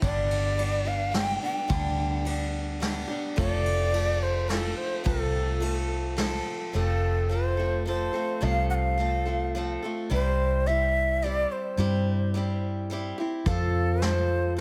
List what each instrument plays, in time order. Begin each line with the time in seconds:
0.02 fingered electric bass G1, steel-string acoustic guitar G2 D3 G3 B3 D4 G4, shakuhachi D5, kick, ride
0.31 ride
0.57 steel-string acoustic guitar G3 B3 D4 G4, ride
0.85 steel-string acoustic guitar G3 B3 D4 G4, shakuhachi F5
1.12 steel-string acoustic guitar G3 B3 D4 G4, shakuhachi G5, snare, ride
1.41 steel-string acoustic guitar G3 B3 D4 G4, shakuhachi G5
1.68 fingered electric bass D2, steel-string acoustic guitar G2 D3 G3 B3 D4 G4, kick, ride
2.25 steel-string acoustic guitar G3 B3 D4 G4, ride
2.80 steel-string acoustic guitar G3 B3 D4 G4, snare, ride
3.08 steel-string acoustic guitar G3 B3 D4 G4
3.36 fingered electric bass F1, steel-string acoustic guitar F2 C3 F3 A3 C4 A4, shakuhachi D5, kick, ride
3.66 ride
3.92 steel-string acoustic guitar F3 A3 C4 A4, ride
4.23 shakuhachi C5
4.48 steel-string acoustic guitar F3 A3 C4 A4, shakuhachi A4, snare, ride
4.77 shakuhachi C5
5.04 fingered electric bass C2, steel-string acoustic guitar F2 C3 F3 A3 C4 A4, shakuhachi A4, kick, ride
5.60 steel-string acoustic guitar F3 A3 C4 A4, ride
6.17 steel-string acoustic guitar F3 A3 C4 A4, snare, ride
6.73 fingered electric bass F1, steel-string acoustic guitar F2 C3 F3 A3 C4 A4, shakuhachi A4
7.29 steel-string acoustic guitar F3 A3 C4 A4, shakuhachi C5
7.57 steel-string acoustic guitar F3 A3 C4 A4
7.86 steel-string acoustic guitar F3 A3 C4 A4, shakuhachi C5
8.13 steel-string acoustic guitar F3 A3 C4 A4
8.41 fingered electric bass C2, steel-string acoustic guitar F2 C3 F3 A3 C4 A4, shakuhachi F5
8.70 shakuhachi F#5
8.75 shakuhachi F5
8.98 steel-string acoustic guitar F3 A3 C4 A4
9.26 steel-string acoustic guitar F3 A3 C4 A4
9.55 steel-string acoustic guitar F3 A3 C4 A4
9.82 steel-string acoustic guitar F3 A3 C4 A4
10.10 fingered electric bass C2, steel-string acoustic guitar C3 G3 C4 E4 G4, shakuhachi C5
10.66 steel-string acoustic guitar G3 C4 E4 G4, shakuhachi E5
11.22 steel-string acoustic guitar G3 C4 E4 G4, shakuhachi D5
11.52 shakuhachi C5
11.77 fingered electric bass G2, steel-string acoustic guitar C3 G3 C4 E4 G4
12.34 steel-string acoustic guitar G3 C4 E4 G4
12.90 steel-string acoustic guitar G3 C4 E4 G4
13.18 steel-string acoustic guitar C4 E4 G4
13.46 steel-string acoustic guitar F2 C3 F3 C4 F4 A4, fingered electric bass F2, shakuhachi A#4, kick, closed hi-hat
13.50 shakuhachi A4
14.02 steel-string acoustic guitar F3 C4 F4 A4, shakuhachi C5, snare, closed hi-hat
14.57 steel-string acoustic guitar F3, shakuhachi C5